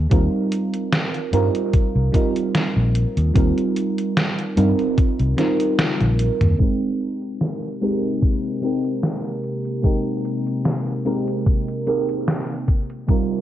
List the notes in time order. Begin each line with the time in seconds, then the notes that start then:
0.10 D#2 G3 C4 D#4 F4 A#4, kick, closed hi-hat
0.52 closed hi-hat
0.74 closed hi-hat
0.92 snare, closed hi-hat
1.14 closed hi-hat
1.32 G2 G3 C4 D#4 F4 A#4, closed hi-hat
1.55 closed hi-hat
1.73 muted fingered electric bass stroke, kick, closed hi-hat
1.95 C2
2.12 G3 C4 D#4 F4 A#4, kick, closed hi-hat
2.36 closed hi-hat
2.55 snare, closed hi-hat
2.76 A#1
2.95 closed hi-hat
3.17 D#2, closed hi-hat
3.34 D#2 G3 C4 D#4 F4 A#4, kick, closed hi-hat
3.58 closed hi-hat
3.76 closed hi-hat
3.98 closed hi-hat
4.17 snare, closed hi-hat
4.39 closed hi-hat
4.57 G2 G3 C4 D#4 F4 A#4, closed hi-hat
4.79 closed hi-hat
4.98 kick, closed hi-hat
5.19 C2, closed hi-hat
5.37 G3 C4 D#4 F4 A#4, snare, closed hi-hat
5.60 closed hi-hat
5.79 snare, closed hi-hat, high tom
6.01 A#1, closed hi-hat, high tom
6.19 closed hi-hat
6.41 D#2, closed hi-hat, mid tom
6.59 C3 G#3 A#3 C4 D#4 G4 A#4, kick, closed hi-hat
7.00 closed hi-hat
7.22 closed hi-hat
7.41 snare, closed hi-hat
7.63 closed hi-hat
7.81 G#3 C4 D#4 G4 A#4, closed hi-hat
8.03 closed hi-hat
8.22 kick, closed hi-hat
8.44 closed hi-hat
8.61 G#3 C4 D#4 G4 A#4, closed hi-hat
8.84 closed hi-hat
9.03 snare, closed hi-hat
9.44 closed hi-hat
9.65 closed hi-hat
9.83 G#3 C4 D#4 G4 A#4, kick, closed hi-hat
10.25 closed hi-hat
10.47 closed hi-hat
10.65 snare, closed hi-hat
10.87 closed hi-hat
11.05 G#3 C4 D#4 G4 A#4, closed hi-hat
11.28 closed hi-hat
11.46 kick, closed hi-hat
11.68 closed hi-hat
11.87 G#3 C4 D#4 G4 A#4, closed hi-hat
12.09 closed hi-hat
12.28 snare, closed hi-hat
12.68 G3 D#4 F4, kick, closed hi-hat
12.90 closed hi-hat
13.07 G3 C4 D#4 F4 A#4, kick, closed hi-hat